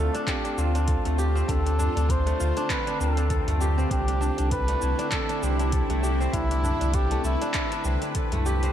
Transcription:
Already playing: synth drone D3 C4 F4, kora A3 D4 F4 A4, synth texture C4, muted trumpet A4
0.13 kora D4, closed hi-hat, tabla na, cabasa
0.21 muted trumpet A4
0.27 muted trumpet G4, kora D5, kick, clap, closed hi-hat, cabasa
0.44 kora D4, closed hi-hat, cabasa
0.58 sub bass D2, kora C4, muted trumpet F4, cabasa
0.75 kora D4, closed hi-hat, tabla tin, cabasa
0.88 kora A4, kick, closed hi-hat, cabasa
1.05 sub bass D2, kora A3, closed hi-hat, cabasa
1.18 kora G4, cabasa
1.35 kora C4, cabasa
1.48 sub bass D2, kora D4, muted trumpet A4, kick, closed hi-hat, cabasa
1.66 kora D4, closed hi-hat, cabasa
1.79 kora D4, tabla na, tabla ge, cabasa
1.96 sub bass D2, kora D4, closed hi-hat, tabla tin, cabasa
2.09 kora A4, muted trumpet C5, kick, closed hi-hat, cabasa
2.26 kora A3, closed hi-hat, tabla na, cabasa
2.38 sub bass D2, kora F4, tabla tin, cabasa
2.57 kora D4, closed hi-hat, tabla na, cabasa
2.70 muted trumpet B4, kora D5, kick, clap, closed hi-hat, cabasa
2.86 kora D4, closed hi-hat, tabla tin, cabasa
3.00 sub bass D2, kora C4, muted trumpet A4, cabasa
3.17 kora D4, closed hi-hat, cabasa
3.30 kora A4, kick, closed hi-hat, cabasa
3.47 sub bass D2, kora A3, closed hi-hat, tabla ge, cabasa
3.60 kora G4, tabla tin, cabasa
3.78 kora C4, cabasa
3.91 sub bass C2, synth drone D3 E4, kora D4, muted trumpet G4, kick, closed hi-hat, cabasa
4.08 kora D4, closed hi-hat, cabasa
4.21 kora D4, tabla na, cabasa
4.38 sub bass C2, kora D4, closed hi-hat, tabla tin, cabasa
4.51 kora A4, muted trumpet B4, kick, closed hi-hat, cabasa
4.68 kora A3, closed hi-hat, tabla na, cabasa
4.82 sub bass C2, kora E4, cabasa
4.99 kora D4, closed hi-hat, tabla na, cabasa
5.12 muted trumpet A4, kora D5, kick, clap, closed hi-hat, cabasa
5.29 kora D4, closed hi-hat, cabasa
5.43 sub bass C2, kora C4, muted trumpet G4, cabasa
5.59 kora D4, closed hi-hat, tabla tin, cabasa
5.72 kora A4, kick, closed hi-hat, cabasa
5.90 sub bass C2, kora A3, closed hi-hat, cabasa
6.02 kora G4, tabla tin, cabasa
6.20 kora C4, cabasa
6.32 sub bass C2, kora D4, muted trumpet E4, synth drone B4, kick, closed hi-hat, cabasa
6.51 kora D4, closed hi-hat, cabasa
6.63 kora D4, tabla na, tabla ge, cabasa
6.80 sub bass C2, kora D4, closed hi-hat, tabla tin, cabasa
6.94 muted trumpet G4, kora A4, kick, closed hi-hat, cabasa
7.11 kora A3, closed hi-hat, tabla na, cabasa
7.24 sub bass C2, muted trumpet E4, kora E4, tabla tin, cabasa
7.41 kora D4, closed hi-hat, tabla na, cabasa
7.54 kick, clap, closed hi-hat, cabasa
7.72 kora D4, closed hi-hat, tabla tin, cabasa
7.85 sub bass C2, kora C4, cabasa
8.02 kora D4, closed hi-hat, cabasa
8.15 kora A4, kick, closed hi-hat, cabasa
8.32 sub bass C2, kora A3, closed hi-hat, tabla ge, cabasa
8.46 kora G4, tabla tin, cabasa
8.63 kora C4, closed hi-hat, cabasa

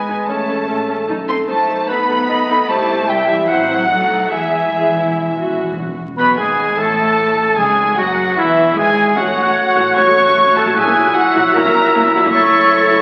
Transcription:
Already playing: cello section G#3, french horn section G#3 B3, clarinet D#5, violin section G#5, flute section G#5
0.08 double bass section G#1, viola section D#4 B4
0.27 double bass section A1, cello section A3, french horn section C#4, viola section C#4 A4, clarinet C#5, violin section A5, flute section A5
0.48 double bass section A1, viola section C#4 A4
0.68 double bass section A1, viola section C#4 A4, clarinet A4
0.88 double bass section A1, viola section C#4 A4
1.08 double bass section B1, timpani B2, french horn section A3 D#4, viola section D#4 A4
1.28 double bass section B1, cello section C4, viola section D#4 A4, violin section C6, flute section C6
1.48 double bass section B1, cello section A3, viola section D#4 A4, clarinet C5, violin section A5, flute section A5
1.68 double bass section B1, viola section D#4 A4
1.87 double bass section B1, cello section B3, viola section D#4 A4, clarinet B4, violin section B5, flute section B5
2.08 double bass section B1, viola section D#4 A4
2.28 double bass section B1, viola section D#4 A4, clarinet D#5
2.48 double bass section B1, viola section D#4 A4
2.68 double bass section C2, french horn section G3 E4, cello section A3, viola section E4 G4, clarinet C5, violin section A5, flute section A5
3.08 cello section G3, viola section E4 G4, clarinet E5, flute section G5, violin section G5
3.27 cello section E3, violin section E5, flute section E5
3.48 double bass section A1, cello section F#3, french horn section C4, viola section E4 C5, flute section F#5, violin section F#5, clarinet F#5
3.70 viola section C5
3.87 double bass section B1, french horn section A3 D#4, viola section D#4 A4
4.30 double bass section E2, timpani E2, cello section E3, french horn section G#3 E4, viola section E4 G#4, flute section E5, violin section E5, clarinet G#5
4.56 timpani E2
4.63 timpani E2
4.71 timpani E2, viola section G#4
4.79 timpani E2
4.86 timpani E2
4.93 timpani E2, viola section E4
5.02 timpani E2
5.09 timpani E2
5.16 timpani E2
5.24 timpani E2
5.31 timpani E2
5.37 timpani E2, viola section F#4
5.46 timpani E2
5.55 timpani E2
5.62 timpani E2
5.70 timpani E2
5.77 timpani E2
5.85 timpani E2
6.17 double bass section B1, cello section B2, french horn section B3, viola section B3, clarinet B4, oboe B4, flute section B5, violin section B5
6.37 double bass section G#1, cello section G#2, viola section G#3, french horn section G#3, clarinet G#4, oboe G#4, flute section G#5, violin section G#5
6.76 double bass section A1, cello section A2, french horn section A3, viola section A3, clarinet A4, flute section A5, violin section A5
6.81 oboe A4
7.56 double bass section G#1, cello section G#2, timpani C#3, viola section G#3, french horn section G#3, clarinet G#4, oboe G#4, flute section G#5, violin section G#5
7.96 double bass section F#1, cello section F#2, viola section F#3, french horn section F#3, clarinet F#4, oboe F#4, flute section F#5, violin section F#5
8.36 double bass section E1, cello section E2, french horn section E3, viola section E3, clarinet E4, oboe E4, violin section E5, flute section E5
8.76 double bass section G#1, cello section G#2, french horn section G#3, viola section G#3, clarinet G#4, oboe G#4, violin section G#5, flute section G#5
9.16 double bass section A1, cello section A2, french horn section A3 F#4, viola section C#4 F#4, clarinet F#4, oboe C#5, violin section F#5, flute section F#6
9.26 cello section A2, viola section F#3 A3
9.35 double bass section A1, cello section A2, viola section A3 C#4
9.45 cello section A2, viola section C#4 F#4
9.76 double bass section A1, cello section A2, viola section C#4 F#4
9.95 double bass section A1, cello section A2, viola section C#4 F#4, clarinet C#5, violin section C#6
10.07 cello section A2, viola section F#3 A3
10.16 double bass section A1, cello section A2, viola section A3 C#4
10.26 cello section A2, viola section C#4 F#4
10.36 double bass section A1, cello section A2, viola section F#3 A3
10.46 cello section A2, viola section A3 C#4
10.56 double bass section A1, cello section A2, viola section C#4 F#4, clarinet A4, violin section A5
10.66 cello section A2, viola section F#3 A3
10.75 double bass section A#1, cello section A#2, french horn section F#3 E4, viola section E4 F#4, clarinet G#4, oboe E5, violin section G#5
10.86 cello section A#2, viola section A#3 C#4
10.96 double bass section A#1, cello section A#2, viola section C#4 E4
11.06 cello section A#2, viola section E4 F#4
11.15 clarinet F#4, violin section F#5
11.35 double bass section A#1, cello section A#2, viola section E4 F#4
11.54 double bass section A#1, cello section A#2, viola section E4 F#4, clarinet A#4, violin section A#5
11.65 cello section A#2, viola section A#3 C#4
11.75 double bass section A#1, cello section A#2, viola section C#4 E4
11.85 cello section A#2, viola section E4 F#4
11.95 double bass section A#1, cello section A#2, viola section A#3 C#4
12.04 cello section A#2, viola section C#4 E4
12.15 double bass section A#1, cello section A#2, viola section E4 F#4
12.25 cello section A#2, viola section A#3 C#4
12.33 double bass section F#1, cello section F#2, french horn section A3, viola section E4 A4, clarinet C#5, violin section C#6, flute section A6

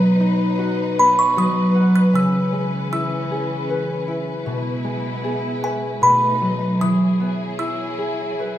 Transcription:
Already playing: harp B2 F#3 B3 G#4 B4, string section F#3 D#4 B4
0.20 harp D#4
0.59 harp F#4
0.98 harp B3, music box B5
1.19 music box C#6
1.37 harp F#3, music box D#6
1.75 harp F#5
1.96 music box F#6
2.13 harp C#3, string section E3 C#4, music box E6
2.53 harp G#3
2.92 harp E4, music box E6
3.31 harp G#4
3.70 harp B4
4.08 harp E4
4.46 string section B2 G#3 E4, harp B2
4.84 harp G#3
5.24 harp G#4
5.63 harp B4, music box G#5
6.01 harp B2, string section A3 D#4 B4, music box B5
6.41 harp F#3
6.80 harp E3, string section F#3 E4 G#4, music box D#6
7.20 harp B3
7.59 harp E4, music box E6
7.98 harp G#4
8.39 harp B4

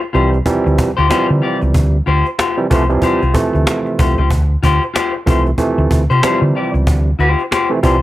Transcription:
0.01 muted clean electric guitar stroke, cajon slap
0.13 fingered electric bass C2, tine electric piano C3 E3 F3 G3, clean electric guitar F4 G4 C5, cajon slap
0.33 muted clean electric guitar stroke, cajon slap
0.46 tine electric piano C3 E3 F3 G3, muted fingered electric bass stroke, muted clean electric guitar stroke, cajon bass, cajon slap
0.64 fingered electric bass D2, muted clean electric guitar stroke, cajon slap
0.78 cajon bass
0.97 fingered electric bass D2, clean electric guitar F4 G4 C5, cajon slap
1.10 tine electric piano C3 E3 F3 G3, clean electric guitar F4 G4 C5, cajon slap
1.29 fingered electric bass D3, muted clean electric guitar stroke
1.42 clean electric guitar F4 G4 D5
1.61 fingered electric bass C#2, muted clean electric guitar stroke, cajon slap
1.74 fingered electric bass D2, cajon bass
1.93 cajon slap
2.06 fingered electric bass D2, clean electric guitar F4 G4 C5, cajon slap
2.26 cajon slap
2.39 clean electric guitar F4 G4 C5, cajon slap
2.58 tine electric piano C3 E3 F3 G3, muted clean electric guitar stroke, cajon slap
2.70 fingered electric bass C2, tine electric piano C3 E3 F3 A3, clean electric guitar F4 G4 C5, cajon bass
2.89 tine electric piano C3 E3 F3 G3, muted clean electric guitar stroke, cajon slap
3.02 clean electric guitar F4 G4 C5, muted fingered electric bass stroke, cajon bass, cajon slap
3.22 fingered electric bass C2, cajon slap
3.34 tine electric piano C3 E3 F3 A3, muted clean electric guitar stroke, cajon bass
3.54 fingered electric bass D2, muted clean electric guitar stroke, cajon slap
3.66 muted clean electric guitar stroke, cajon slap
3.86 muted clean electric guitar stroke, cajon slap
3.99 fingered electric bass C2, clean electric guitar F4 G4 C5, cajon bass
4.18 fingered electric bass C#2, clean electric guitar F4 G4 C5, cajon slap
4.30 fingered electric bass D2, cajon bass
4.50 cajon slap
4.63 fingered electric bass D2, clean electric guitar F4 G4 C5, cajon bass
4.82 cajon slap
4.94 clean electric guitar F4 G4 C5, cajon slap
5.14 muted clean electric guitar stroke, cajon slap
5.26 fingered electric bass C2, tine electric piano C3 E3 F3 A3, clean electric guitar F4 G4 C5, cajon bass
5.46 muted clean electric guitar stroke, cajon slap
5.58 tine electric piano C3 E3 F3 A3, muted clean electric guitar stroke, cajon bass, cajon slap
5.78 fingered electric bass D2, muted clean electric guitar stroke, cajon slap
5.91 fingered electric bass D2, cajon bass
6.10 fingered electric bass C3, clean electric guitar F4 G4 C5, cajon slap
6.23 tine electric piano C3 E3 F3 G3, clean electric guitar F4 G4 C5, cajon slap
6.42 fingered electric bass D3, muted clean electric guitar stroke, cajon slap
6.55 clean electric guitar F4 G4 D5
6.74 fingered electric bass C#2, muted clean electric guitar stroke, cajon slap
6.87 fingered electric bass D2, cajon bass
7.06 cajon slap
7.19 fingered electric bass D2, clean electric guitar F4 G4 C5, cajon slap
7.39 cajon slap
7.51 clean electric guitar F4 G4 C5, cajon slap
7.70 tine electric piano C3 E3 F3 A3, muted clean electric guitar stroke, cajon slap
7.83 fingered electric bass C2, tine electric piano C3 E3 F3 G3, clean electric guitar F4 G4 C5, cajon bass

